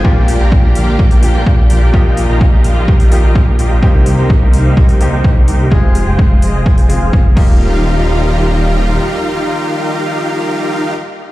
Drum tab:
CC |----------------|----------------|----------------|--------------x-|
HH |--o---o--oo---o-|--o---o--oo---o-|--o---o--oo---o-|--o---o--oo-----|
BD |o---o---o---o---|o---o---o---o---|o---o---o---o---|o---o---o---o-o-|

CC |----------------|----------------|
HH |----------------|----------------|
BD |----------------|----------------|